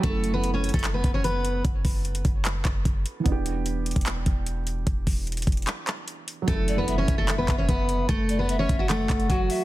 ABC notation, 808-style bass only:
X:1
M:4/4
L:1/16
Q:1/4=149
K:F#phr
V:1 name="808-style bass" clef=bass
F,,,6- F,,, F,,,3 F,,,6 | F,,,2 F,,,4 F,,,4 F,,,2 F,,,2 z2 | E,,,6- E,,, E,,,3 E,,,6 | E,,,2 E,,,4 E,,,2 z8 |
F,,,6 F,,,4 F,,,2 F,,,4 | F,,,6 F,,,4 F,,,2 F,,,2 z2 |]